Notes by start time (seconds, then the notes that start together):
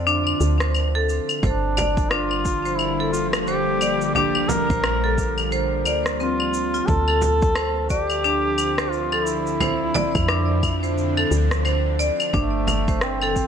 Already playing: F2 D3 F3 C4 E5
0.07 D4, shaker
0.27 claves
0.41 D2, shaker
0.60 C5, cross-stick, shaker
0.75 claves, shaker
0.95 A4
1.09 shaker
1.29 claves, shaker
1.42 G1 D3 F3 G3 A#3 D4 C5, kick, frame drum, shaker
1.77 D5, frame drum, claves, shaker
1.97 kick, shaker
2.10 D4 F4, cross-stick, shaker
2.31 claves
2.45 kick, shaker
2.65 C5, shaker
2.78 E4, claves, shaker
3.00 A4
3.12 F4, shaker
3.33 cross-stick, claves, shaker
3.46 G4 C5, shaker
3.81 D5, claves, shaker
4.01 shaker
4.14 D4 G4, frame drum, shaker
4.35 claves
4.48 A#4, frame drum, shaker
4.70 A#1 C5, kick, shaker
4.84 cross-stick, claves, shaker
5.04 A4
5.18 kick, shaker
5.38 claves, shaker
5.52 C5, shaker
5.85 D2 D5, claves, shaker
6.06 cross-stick, shaker
6.20 C4 F4, shaker
6.40 claves
6.54 shaker
6.74 F4, shaker
6.87 D2 D3 F3 C4 A4 E5, kick, frame drum, shaker
7.08 A4, claves
7.22 frame drum, shaker
7.42 kick, shaker
7.55 C5, cross-stick, claves, shaker
7.89 G4 D5, kick, shaker
8.10 claves, shaker
8.24 D4, shaker
8.58 claves, shaker
8.78 C5, cross-stick, shaker
8.91 F4, shaker
9.12 A4, claves
9.25 E4, shaker
9.47 shaker
9.60 D4 C5, frame drum, claves, shaker
9.94 D5, frame drum, shaker
10.15 F2, kick, claves, shaker
10.28 D4, cross-stick, shaker
10.63 kick, claves, shaker
10.83 C5, shaker
10.98 shaker
11.17 A4, claves
11.31 D2, shaker
11.51 cross-stick, shaker
11.65 C5, claves, shaker
11.99 D5, shaker
12.20 claves, shaker
12.33 G1 A#2 G3 A3 D4 F4, kick, frame drum, shaker
12.67 frame drum, claves, shaker
12.88 C5, kick, shaker
13.01 C4, cross-stick, shaker
13.22 A4, claves
13.36 kick, shaker